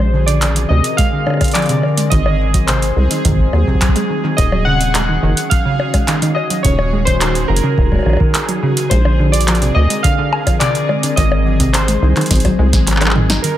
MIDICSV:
0, 0, Header, 1, 7, 480
1, 0, Start_track
1, 0, Tempo, 566038
1, 1796, Time_signature, 4, 2, 24, 8
1, 11512, End_track
2, 0, Start_track
2, 0, Title_t, "Synth keys"
2, 0, Program_c, 0, 88
2, 0, Note_on_c, 0, 72, 90
2, 223, Note_on_c, 0, 74, 94
2, 240, Note_off_c, 0, 72, 0
2, 583, Note_on_c, 0, 75, 102
2, 601, Note_off_c, 0, 74, 0
2, 823, Note_on_c, 0, 77, 111
2, 837, Note_off_c, 0, 75, 0
2, 1302, Note_on_c, 0, 74, 92
2, 1324, Note_off_c, 0, 77, 0
2, 1782, Note_on_c, 0, 75, 99
2, 1803, Note_off_c, 0, 74, 0
2, 2262, Note_on_c, 0, 72, 84
2, 2284, Note_off_c, 0, 75, 0
2, 3435, Note_off_c, 0, 72, 0
2, 3703, Note_on_c, 0, 75, 101
2, 3942, Note_on_c, 0, 78, 111
2, 3957, Note_off_c, 0, 75, 0
2, 4663, Note_on_c, 0, 77, 103
2, 4691, Note_off_c, 0, 78, 0
2, 5355, Note_off_c, 0, 77, 0
2, 5381, Note_on_c, 0, 75, 86
2, 5611, Note_off_c, 0, 75, 0
2, 5621, Note_on_c, 0, 73, 99
2, 5981, Note_on_c, 0, 72, 89
2, 6000, Note_off_c, 0, 73, 0
2, 6342, Note_on_c, 0, 70, 85
2, 6359, Note_off_c, 0, 72, 0
2, 7275, Note_off_c, 0, 70, 0
2, 7545, Note_on_c, 0, 72, 93
2, 7904, Note_on_c, 0, 74, 98
2, 7921, Note_off_c, 0, 72, 0
2, 8265, Note_on_c, 0, 75, 105
2, 8281, Note_off_c, 0, 74, 0
2, 8504, Note_on_c, 0, 77, 108
2, 8518, Note_off_c, 0, 75, 0
2, 8956, Note_off_c, 0, 77, 0
2, 8985, Note_on_c, 0, 74, 98
2, 9465, Note_on_c, 0, 75, 100
2, 9485, Note_off_c, 0, 74, 0
2, 9946, Note_on_c, 0, 72, 84
2, 9965, Note_off_c, 0, 75, 0
2, 11117, Note_off_c, 0, 72, 0
2, 11383, Note_on_c, 0, 70, 91
2, 11512, Note_off_c, 0, 70, 0
2, 11512, End_track
3, 0, Start_track
3, 0, Title_t, "Synth texture"
3, 0, Program_c, 1, 99
3, 0, Note_on_c, 1, 68, 79
3, 11387, Note_off_c, 1, 68, 0
3, 11397, Note_on_c, 1, 68, 78
3, 11512, Note_off_c, 1, 68, 0
3, 11512, End_track
4, 0, Start_track
4, 0, Title_t, "Ambient pad"
4, 0, Program_c, 2, 92
4, 0, Note_on_c, 2, 50, 83
4, 0, Note_on_c, 2, 60, 72
4, 0, Note_on_c, 2, 70, 91
4, 1777, Note_off_c, 2, 50, 0
4, 1777, Note_off_c, 2, 60, 0
4, 1777, Note_off_c, 2, 70, 0
4, 1795, Note_on_c, 2, 54, 84
4, 1795, Note_on_c, 2, 68, 88
4, 1796, Note_on_c, 2, 60, 76
4, 3696, Note_off_c, 2, 54, 0
4, 3697, Note_off_c, 2, 60, 0
4, 3697, Note_off_c, 2, 68, 0
4, 3716, Note_on_c, 2, 51, 80
4, 3716, Note_on_c, 2, 61, 75
4, 3716, Note_on_c, 2, 66, 94
4, 5617, Note_off_c, 2, 61, 0
4, 5638, Note_on_c, 2, 63, 70
4, 7522, Note_off_c, 2, 51, 0
4, 7522, Note_off_c, 2, 66, 0
4, 7538, Note_off_c, 2, 63, 0
4, 7557, Note_on_c, 2, 50, 80
4, 7557, Note_on_c, 2, 70, 94
4, 7558, Note_on_c, 2, 60, 72
4, 9457, Note_off_c, 2, 50, 0
4, 9457, Note_off_c, 2, 70, 0
4, 9476, Note_on_c, 2, 54, 79
4, 9476, Note_on_c, 2, 68, 90
4, 11363, Note_off_c, 2, 60, 0
4, 11377, Note_off_c, 2, 54, 0
4, 11377, Note_off_c, 2, 68, 0
4, 11394, Note_on_c, 2, 61, 70
4, 11394, Note_on_c, 2, 66, 86
4, 11395, Note_on_c, 2, 51, 82
4, 11512, Note_off_c, 2, 51, 0
4, 11512, Note_off_c, 2, 61, 0
4, 11512, Note_off_c, 2, 66, 0
4, 11512, End_track
5, 0, Start_track
5, 0, Title_t, "Synth arpeggio sound"
5, 0, Program_c, 3, 84
5, 116, Note_on_c, 3, 50, 75
5, 220, Note_off_c, 3, 50, 0
5, 235, Note_on_c, 3, 50, 101
5, 340, Note_off_c, 3, 50, 0
5, 476, Note_on_c, 3, 53, 77
5, 580, Note_off_c, 3, 53, 0
5, 595, Note_on_c, 3, 48, 106
5, 700, Note_off_c, 3, 48, 0
5, 836, Note_on_c, 3, 56, 77
5, 898, Note_off_c, 3, 56, 0
5, 956, Note_on_c, 3, 50, 76
5, 1060, Note_off_c, 3, 50, 0
5, 1076, Note_on_c, 3, 50, 102
5, 1180, Note_off_c, 3, 50, 0
5, 1315, Note_on_c, 3, 53, 87
5, 1420, Note_off_c, 3, 53, 0
5, 1436, Note_on_c, 3, 48, 94
5, 1540, Note_off_c, 3, 48, 0
5, 1675, Note_on_c, 3, 56, 77
5, 1738, Note_off_c, 3, 56, 0
5, 1796, Note_on_c, 3, 51, 82
5, 1900, Note_off_c, 3, 51, 0
5, 1915, Note_on_c, 3, 51, 99
5, 2020, Note_off_c, 3, 51, 0
5, 2155, Note_on_c, 3, 54, 74
5, 2259, Note_off_c, 3, 54, 0
5, 2275, Note_on_c, 3, 48, 97
5, 2380, Note_off_c, 3, 48, 0
5, 2515, Note_on_c, 3, 56, 75
5, 2578, Note_off_c, 3, 56, 0
5, 2636, Note_on_c, 3, 51, 77
5, 2740, Note_off_c, 3, 51, 0
5, 2755, Note_on_c, 3, 51, 100
5, 2859, Note_off_c, 3, 51, 0
5, 2995, Note_on_c, 3, 54, 74
5, 3099, Note_off_c, 3, 54, 0
5, 3115, Note_on_c, 3, 48, 97
5, 3220, Note_off_c, 3, 48, 0
5, 3356, Note_on_c, 3, 56, 71
5, 3418, Note_off_c, 3, 56, 0
5, 3477, Note_on_c, 3, 51, 80
5, 3580, Note_off_c, 3, 51, 0
5, 3597, Note_on_c, 3, 51, 102
5, 3700, Note_off_c, 3, 51, 0
5, 3836, Note_on_c, 3, 54, 76
5, 3940, Note_off_c, 3, 54, 0
5, 3957, Note_on_c, 3, 49, 102
5, 4060, Note_off_c, 3, 49, 0
5, 4196, Note_on_c, 3, 56, 80
5, 4258, Note_off_c, 3, 56, 0
5, 4316, Note_on_c, 3, 51, 76
5, 4420, Note_off_c, 3, 51, 0
5, 4436, Note_on_c, 3, 51, 107
5, 4540, Note_off_c, 3, 51, 0
5, 4677, Note_on_c, 3, 54, 78
5, 4780, Note_off_c, 3, 54, 0
5, 4796, Note_on_c, 3, 49, 100
5, 4900, Note_off_c, 3, 49, 0
5, 5036, Note_on_c, 3, 56, 72
5, 5098, Note_off_c, 3, 56, 0
5, 5155, Note_on_c, 3, 51, 81
5, 5260, Note_off_c, 3, 51, 0
5, 5275, Note_on_c, 3, 51, 95
5, 5380, Note_off_c, 3, 51, 0
5, 5516, Note_on_c, 3, 54, 81
5, 5620, Note_off_c, 3, 54, 0
5, 5636, Note_on_c, 3, 49, 100
5, 5740, Note_off_c, 3, 49, 0
5, 5876, Note_on_c, 3, 56, 74
5, 5938, Note_off_c, 3, 56, 0
5, 5996, Note_on_c, 3, 51, 74
5, 6100, Note_off_c, 3, 51, 0
5, 6116, Note_on_c, 3, 51, 99
5, 6220, Note_off_c, 3, 51, 0
5, 6356, Note_on_c, 3, 54, 80
5, 6460, Note_off_c, 3, 54, 0
5, 6475, Note_on_c, 3, 49, 105
5, 6580, Note_off_c, 3, 49, 0
5, 6716, Note_on_c, 3, 56, 73
5, 6778, Note_off_c, 3, 56, 0
5, 6836, Note_on_c, 3, 51, 73
5, 6940, Note_off_c, 3, 51, 0
5, 6956, Note_on_c, 3, 51, 96
5, 7060, Note_off_c, 3, 51, 0
5, 7196, Note_on_c, 3, 54, 70
5, 7300, Note_off_c, 3, 54, 0
5, 7316, Note_on_c, 3, 49, 104
5, 7420, Note_off_c, 3, 49, 0
5, 7556, Note_on_c, 3, 56, 82
5, 7618, Note_off_c, 3, 56, 0
5, 7676, Note_on_c, 3, 50, 75
5, 7780, Note_off_c, 3, 50, 0
5, 7796, Note_on_c, 3, 50, 98
5, 7900, Note_off_c, 3, 50, 0
5, 8037, Note_on_c, 3, 53, 86
5, 8140, Note_off_c, 3, 53, 0
5, 8156, Note_on_c, 3, 48, 102
5, 8260, Note_off_c, 3, 48, 0
5, 8397, Note_on_c, 3, 56, 79
5, 8459, Note_off_c, 3, 56, 0
5, 8517, Note_on_c, 3, 50, 78
5, 8621, Note_off_c, 3, 50, 0
5, 8637, Note_on_c, 3, 50, 99
5, 8740, Note_off_c, 3, 50, 0
5, 8877, Note_on_c, 3, 53, 75
5, 8980, Note_off_c, 3, 53, 0
5, 8997, Note_on_c, 3, 48, 102
5, 9100, Note_off_c, 3, 48, 0
5, 9237, Note_on_c, 3, 56, 81
5, 9299, Note_off_c, 3, 56, 0
5, 9358, Note_on_c, 3, 50, 81
5, 9461, Note_off_c, 3, 50, 0
5, 9477, Note_on_c, 3, 51, 101
5, 9580, Note_off_c, 3, 51, 0
5, 9716, Note_on_c, 3, 54, 76
5, 9820, Note_off_c, 3, 54, 0
5, 9837, Note_on_c, 3, 48, 102
5, 9940, Note_off_c, 3, 48, 0
5, 10077, Note_on_c, 3, 56, 78
5, 10139, Note_off_c, 3, 56, 0
5, 10197, Note_on_c, 3, 51, 78
5, 10300, Note_off_c, 3, 51, 0
5, 10316, Note_on_c, 3, 51, 101
5, 10420, Note_off_c, 3, 51, 0
5, 10556, Note_on_c, 3, 54, 75
5, 10660, Note_off_c, 3, 54, 0
5, 10676, Note_on_c, 3, 56, 105
5, 10738, Note_off_c, 3, 56, 0
5, 10915, Note_on_c, 3, 54, 80
5, 11019, Note_off_c, 3, 54, 0
5, 11036, Note_on_c, 3, 51, 72
5, 11140, Note_off_c, 3, 51, 0
5, 11155, Note_on_c, 3, 51, 79
5, 11259, Note_off_c, 3, 51, 0
5, 11276, Note_on_c, 3, 63, 102
5, 11338, Note_off_c, 3, 63, 0
5, 11395, Note_on_c, 3, 51, 94
5, 11500, Note_off_c, 3, 51, 0
5, 11512, End_track
6, 0, Start_track
6, 0, Title_t, "Acid bass"
6, 0, Program_c, 4, 38
6, 0, Note_on_c, 4, 34, 104
6, 559, Note_off_c, 4, 34, 0
6, 596, Note_on_c, 4, 38, 92
6, 693, Note_off_c, 4, 38, 0
6, 1795, Note_on_c, 4, 32, 102
6, 2479, Note_off_c, 4, 32, 0
6, 2515, Note_on_c, 4, 36, 87
6, 2613, Note_off_c, 4, 36, 0
6, 2755, Note_on_c, 4, 32, 88
6, 2950, Note_off_c, 4, 32, 0
6, 2995, Note_on_c, 4, 39, 88
6, 3092, Note_off_c, 4, 39, 0
6, 3716, Note_on_c, 4, 27, 104
6, 4399, Note_off_c, 4, 27, 0
6, 4434, Note_on_c, 4, 30, 89
6, 4532, Note_off_c, 4, 30, 0
6, 5635, Note_on_c, 4, 27, 104
6, 6319, Note_off_c, 4, 27, 0
6, 6355, Note_on_c, 4, 30, 87
6, 6453, Note_off_c, 4, 30, 0
6, 6595, Note_on_c, 4, 27, 91
6, 6790, Note_off_c, 4, 27, 0
6, 6835, Note_on_c, 4, 34, 89
6, 6933, Note_off_c, 4, 34, 0
6, 7556, Note_on_c, 4, 34, 101
6, 8240, Note_off_c, 4, 34, 0
6, 8276, Note_on_c, 4, 38, 89
6, 8373, Note_off_c, 4, 38, 0
6, 9476, Note_on_c, 4, 32, 108
6, 10159, Note_off_c, 4, 32, 0
6, 10197, Note_on_c, 4, 36, 92
6, 10293, Note_off_c, 4, 36, 0
6, 10436, Note_on_c, 4, 32, 89
6, 10630, Note_off_c, 4, 32, 0
6, 10676, Note_on_c, 4, 36, 97
6, 10796, Note_on_c, 4, 32, 88
6, 10809, Note_off_c, 4, 36, 0
6, 11360, Note_off_c, 4, 32, 0
6, 11512, End_track
7, 0, Start_track
7, 0, Title_t, "Drums"
7, 234, Note_on_c, 9, 42, 51
7, 319, Note_off_c, 9, 42, 0
7, 354, Note_on_c, 9, 39, 114
7, 354, Note_on_c, 9, 42, 65
7, 439, Note_off_c, 9, 39, 0
7, 439, Note_off_c, 9, 42, 0
7, 474, Note_on_c, 9, 42, 38
7, 559, Note_off_c, 9, 42, 0
7, 714, Note_on_c, 9, 42, 53
7, 799, Note_off_c, 9, 42, 0
7, 834, Note_on_c, 9, 42, 66
7, 835, Note_on_c, 9, 36, 126
7, 919, Note_off_c, 9, 42, 0
7, 920, Note_off_c, 9, 36, 0
7, 1074, Note_on_c, 9, 60, 71
7, 1104, Note_off_c, 9, 60, 0
7, 1104, Note_on_c, 9, 60, 61
7, 1134, Note_off_c, 9, 60, 0
7, 1134, Note_on_c, 9, 60, 48
7, 1164, Note_off_c, 9, 60, 0
7, 1164, Note_on_c, 9, 60, 39
7, 1194, Note_off_c, 9, 60, 0
7, 1194, Note_on_c, 9, 42, 48
7, 1194, Note_on_c, 9, 60, 74
7, 1195, Note_on_c, 9, 36, 110
7, 1224, Note_off_c, 9, 42, 0
7, 1224, Note_on_c, 9, 42, 43
7, 1255, Note_off_c, 9, 42, 0
7, 1255, Note_on_c, 9, 42, 34
7, 1279, Note_off_c, 9, 60, 0
7, 1280, Note_off_c, 9, 36, 0
7, 1284, Note_off_c, 9, 42, 0
7, 1284, Note_on_c, 9, 42, 28
7, 1315, Note_off_c, 9, 42, 0
7, 1315, Note_on_c, 9, 39, 126
7, 1315, Note_on_c, 9, 42, 67
7, 1375, Note_off_c, 9, 42, 0
7, 1375, Note_on_c, 9, 42, 16
7, 1400, Note_off_c, 9, 39, 0
7, 1405, Note_off_c, 9, 42, 0
7, 1405, Note_on_c, 9, 42, 13
7, 1435, Note_off_c, 9, 42, 0
7, 1435, Note_on_c, 9, 42, 36
7, 1519, Note_off_c, 9, 42, 0
7, 1555, Note_on_c, 9, 60, 48
7, 1639, Note_off_c, 9, 60, 0
7, 1675, Note_on_c, 9, 42, 52
7, 1759, Note_off_c, 9, 42, 0
7, 1794, Note_on_c, 9, 42, 64
7, 1795, Note_on_c, 9, 36, 109
7, 1879, Note_off_c, 9, 42, 0
7, 1880, Note_off_c, 9, 36, 0
7, 1914, Note_on_c, 9, 60, 74
7, 1999, Note_off_c, 9, 60, 0
7, 2155, Note_on_c, 9, 36, 82
7, 2155, Note_on_c, 9, 42, 49
7, 2240, Note_off_c, 9, 36, 0
7, 2240, Note_off_c, 9, 42, 0
7, 2274, Note_on_c, 9, 39, 121
7, 2274, Note_on_c, 9, 42, 63
7, 2359, Note_off_c, 9, 39, 0
7, 2359, Note_off_c, 9, 42, 0
7, 2395, Note_on_c, 9, 42, 37
7, 2480, Note_off_c, 9, 42, 0
7, 2635, Note_on_c, 9, 42, 51
7, 2720, Note_off_c, 9, 42, 0
7, 2755, Note_on_c, 9, 36, 113
7, 2755, Note_on_c, 9, 42, 63
7, 2785, Note_off_c, 9, 36, 0
7, 2785, Note_on_c, 9, 36, 91
7, 2816, Note_off_c, 9, 36, 0
7, 2816, Note_on_c, 9, 36, 80
7, 2840, Note_off_c, 9, 42, 0
7, 2845, Note_off_c, 9, 36, 0
7, 2845, Note_on_c, 9, 36, 62
7, 2875, Note_off_c, 9, 36, 0
7, 2875, Note_on_c, 9, 36, 81
7, 2960, Note_off_c, 9, 36, 0
7, 2995, Note_on_c, 9, 60, 50
7, 3080, Note_off_c, 9, 60, 0
7, 3115, Note_on_c, 9, 36, 51
7, 3175, Note_off_c, 9, 36, 0
7, 3175, Note_on_c, 9, 36, 63
7, 3235, Note_off_c, 9, 36, 0
7, 3235, Note_on_c, 9, 36, 88
7, 3235, Note_on_c, 9, 39, 126
7, 3235, Note_on_c, 9, 42, 62
7, 3295, Note_off_c, 9, 36, 0
7, 3295, Note_on_c, 9, 36, 99
7, 3319, Note_off_c, 9, 39, 0
7, 3319, Note_off_c, 9, 42, 0
7, 3356, Note_on_c, 9, 42, 35
7, 3380, Note_off_c, 9, 36, 0
7, 3440, Note_off_c, 9, 42, 0
7, 3716, Note_on_c, 9, 36, 104
7, 3716, Note_on_c, 9, 42, 63
7, 3716, Note_on_c, 9, 60, 35
7, 3800, Note_off_c, 9, 36, 0
7, 3800, Note_off_c, 9, 42, 0
7, 3800, Note_off_c, 9, 60, 0
7, 3835, Note_on_c, 9, 60, 72
7, 3920, Note_off_c, 9, 60, 0
7, 4076, Note_on_c, 9, 42, 48
7, 4160, Note_off_c, 9, 42, 0
7, 4195, Note_on_c, 9, 39, 118
7, 4195, Note_on_c, 9, 42, 61
7, 4280, Note_off_c, 9, 39, 0
7, 4280, Note_off_c, 9, 42, 0
7, 4555, Note_on_c, 9, 42, 49
7, 4640, Note_off_c, 9, 42, 0
7, 4675, Note_on_c, 9, 42, 62
7, 4676, Note_on_c, 9, 36, 121
7, 4760, Note_off_c, 9, 36, 0
7, 4760, Note_off_c, 9, 42, 0
7, 4915, Note_on_c, 9, 60, 76
7, 5000, Note_off_c, 9, 60, 0
7, 5035, Note_on_c, 9, 42, 51
7, 5035, Note_on_c, 9, 60, 75
7, 5036, Note_on_c, 9, 36, 107
7, 5120, Note_off_c, 9, 36, 0
7, 5120, Note_off_c, 9, 42, 0
7, 5120, Note_off_c, 9, 60, 0
7, 5155, Note_on_c, 9, 39, 113
7, 5155, Note_on_c, 9, 42, 62
7, 5240, Note_off_c, 9, 39, 0
7, 5240, Note_off_c, 9, 42, 0
7, 5276, Note_on_c, 9, 42, 35
7, 5360, Note_off_c, 9, 42, 0
7, 5395, Note_on_c, 9, 60, 48
7, 5480, Note_off_c, 9, 60, 0
7, 5515, Note_on_c, 9, 42, 47
7, 5600, Note_off_c, 9, 42, 0
7, 5635, Note_on_c, 9, 36, 101
7, 5635, Note_on_c, 9, 42, 66
7, 5720, Note_off_c, 9, 36, 0
7, 5720, Note_off_c, 9, 42, 0
7, 5755, Note_on_c, 9, 60, 78
7, 5839, Note_off_c, 9, 60, 0
7, 5995, Note_on_c, 9, 36, 79
7, 5995, Note_on_c, 9, 42, 49
7, 6080, Note_off_c, 9, 36, 0
7, 6080, Note_off_c, 9, 42, 0
7, 6115, Note_on_c, 9, 39, 114
7, 6115, Note_on_c, 9, 42, 61
7, 6200, Note_off_c, 9, 39, 0
7, 6200, Note_off_c, 9, 42, 0
7, 6236, Note_on_c, 9, 42, 36
7, 6320, Note_off_c, 9, 42, 0
7, 6415, Note_on_c, 9, 42, 47
7, 6499, Note_off_c, 9, 42, 0
7, 6596, Note_on_c, 9, 36, 114
7, 6681, Note_off_c, 9, 36, 0
7, 6715, Note_on_c, 9, 60, 23
7, 6716, Note_on_c, 9, 36, 75
7, 6745, Note_off_c, 9, 60, 0
7, 6745, Note_on_c, 9, 60, 27
7, 6775, Note_off_c, 9, 60, 0
7, 6775, Note_on_c, 9, 60, 29
7, 6801, Note_off_c, 9, 36, 0
7, 6806, Note_off_c, 9, 60, 0
7, 6806, Note_on_c, 9, 60, 33
7, 6836, Note_off_c, 9, 60, 0
7, 6836, Note_on_c, 9, 60, 38
7, 6865, Note_off_c, 9, 60, 0
7, 6865, Note_on_c, 9, 60, 40
7, 6896, Note_off_c, 9, 60, 0
7, 6896, Note_on_c, 9, 60, 46
7, 6926, Note_off_c, 9, 60, 0
7, 6926, Note_on_c, 9, 60, 46
7, 6956, Note_on_c, 9, 36, 105
7, 7011, Note_off_c, 9, 60, 0
7, 7041, Note_off_c, 9, 36, 0
7, 7076, Note_on_c, 9, 39, 120
7, 7076, Note_on_c, 9, 42, 62
7, 7161, Note_off_c, 9, 39, 0
7, 7161, Note_off_c, 9, 42, 0
7, 7196, Note_on_c, 9, 42, 33
7, 7281, Note_off_c, 9, 42, 0
7, 7436, Note_on_c, 9, 42, 49
7, 7521, Note_off_c, 9, 42, 0
7, 7556, Note_on_c, 9, 36, 97
7, 7556, Note_on_c, 9, 42, 67
7, 7556, Note_on_c, 9, 60, 40
7, 7641, Note_off_c, 9, 36, 0
7, 7641, Note_off_c, 9, 42, 0
7, 7641, Note_off_c, 9, 60, 0
7, 7676, Note_on_c, 9, 60, 80
7, 7761, Note_off_c, 9, 60, 0
7, 7916, Note_on_c, 9, 42, 49
7, 7976, Note_off_c, 9, 42, 0
7, 7976, Note_on_c, 9, 42, 40
7, 8037, Note_off_c, 9, 42, 0
7, 8037, Note_on_c, 9, 39, 108
7, 8037, Note_on_c, 9, 42, 63
7, 8097, Note_off_c, 9, 42, 0
7, 8097, Note_on_c, 9, 42, 27
7, 8121, Note_off_c, 9, 39, 0
7, 8156, Note_off_c, 9, 42, 0
7, 8156, Note_on_c, 9, 42, 34
7, 8241, Note_off_c, 9, 42, 0
7, 8397, Note_on_c, 9, 42, 49
7, 8482, Note_off_c, 9, 42, 0
7, 8516, Note_on_c, 9, 36, 112
7, 8516, Note_on_c, 9, 42, 66
7, 8601, Note_off_c, 9, 36, 0
7, 8601, Note_off_c, 9, 42, 0
7, 8756, Note_on_c, 9, 60, 82
7, 8841, Note_off_c, 9, 60, 0
7, 8876, Note_on_c, 9, 36, 109
7, 8877, Note_on_c, 9, 42, 52
7, 8877, Note_on_c, 9, 60, 81
7, 8961, Note_off_c, 9, 36, 0
7, 8961, Note_off_c, 9, 42, 0
7, 8961, Note_off_c, 9, 60, 0
7, 8996, Note_on_c, 9, 39, 114
7, 8996, Note_on_c, 9, 42, 64
7, 9081, Note_off_c, 9, 39, 0
7, 9081, Note_off_c, 9, 42, 0
7, 9117, Note_on_c, 9, 42, 36
7, 9201, Note_off_c, 9, 42, 0
7, 9236, Note_on_c, 9, 60, 52
7, 9321, Note_off_c, 9, 60, 0
7, 9356, Note_on_c, 9, 42, 51
7, 9440, Note_off_c, 9, 42, 0
7, 9476, Note_on_c, 9, 36, 94
7, 9476, Note_on_c, 9, 42, 69
7, 9476, Note_on_c, 9, 60, 41
7, 9561, Note_off_c, 9, 36, 0
7, 9561, Note_off_c, 9, 42, 0
7, 9561, Note_off_c, 9, 60, 0
7, 9596, Note_on_c, 9, 60, 81
7, 9681, Note_off_c, 9, 60, 0
7, 9836, Note_on_c, 9, 36, 76
7, 9836, Note_on_c, 9, 42, 52
7, 9921, Note_off_c, 9, 36, 0
7, 9921, Note_off_c, 9, 42, 0
7, 9957, Note_on_c, 9, 39, 112
7, 9957, Note_on_c, 9, 42, 67
7, 10042, Note_off_c, 9, 39, 0
7, 10042, Note_off_c, 9, 42, 0
7, 10076, Note_on_c, 9, 42, 38
7, 10161, Note_off_c, 9, 42, 0
7, 10316, Note_on_c, 9, 39, 58
7, 10316, Note_on_c, 9, 42, 22
7, 10356, Note_off_c, 9, 42, 0
7, 10356, Note_on_c, 9, 42, 27
7, 10396, Note_off_c, 9, 42, 0
7, 10396, Note_on_c, 9, 42, 31
7, 10401, Note_off_c, 9, 39, 0
7, 10436, Note_off_c, 9, 42, 0
7, 10436, Note_on_c, 9, 36, 113
7, 10436, Note_on_c, 9, 38, 61
7, 10436, Note_on_c, 9, 42, 65
7, 10476, Note_off_c, 9, 42, 0
7, 10476, Note_on_c, 9, 42, 42
7, 10516, Note_off_c, 9, 42, 0
7, 10516, Note_on_c, 9, 42, 45
7, 10521, Note_off_c, 9, 36, 0
7, 10521, Note_off_c, 9, 38, 0
7, 10556, Note_off_c, 9, 42, 0
7, 10556, Note_on_c, 9, 36, 74
7, 10556, Note_on_c, 9, 42, 37
7, 10556, Note_on_c, 9, 48, 58
7, 10556, Note_on_c, 9, 60, 56
7, 10641, Note_off_c, 9, 36, 0
7, 10641, Note_off_c, 9, 42, 0
7, 10641, Note_off_c, 9, 48, 0
7, 10641, Note_off_c, 9, 60, 0
7, 10796, Note_on_c, 9, 36, 108
7, 10796, Note_on_c, 9, 38, 68
7, 10796, Note_on_c, 9, 42, 53
7, 10881, Note_off_c, 9, 36, 0
7, 10881, Note_off_c, 9, 38, 0
7, 10881, Note_off_c, 9, 42, 0
7, 10916, Note_on_c, 9, 39, 54
7, 10916, Note_on_c, 9, 42, 68
7, 10956, Note_off_c, 9, 39, 0
7, 10956, Note_on_c, 9, 39, 64
7, 10996, Note_off_c, 9, 39, 0
7, 10996, Note_on_c, 9, 39, 69
7, 11001, Note_off_c, 9, 42, 0
7, 11036, Note_off_c, 9, 39, 0
7, 11036, Note_on_c, 9, 39, 83
7, 11036, Note_on_c, 9, 42, 36
7, 11036, Note_on_c, 9, 60, 40
7, 11075, Note_off_c, 9, 39, 0
7, 11075, Note_on_c, 9, 39, 93
7, 11115, Note_off_c, 9, 39, 0
7, 11115, Note_on_c, 9, 39, 101
7, 11121, Note_off_c, 9, 42, 0
7, 11121, Note_off_c, 9, 60, 0
7, 11156, Note_on_c, 9, 45, 94
7, 11200, Note_off_c, 9, 39, 0
7, 11241, Note_off_c, 9, 45, 0
7, 11276, Note_on_c, 9, 38, 87
7, 11276, Note_on_c, 9, 42, 55
7, 11361, Note_off_c, 9, 38, 0
7, 11361, Note_off_c, 9, 42, 0
7, 11396, Note_on_c, 9, 42, 66
7, 11481, Note_off_c, 9, 42, 0
7, 11512, End_track
0, 0, End_of_file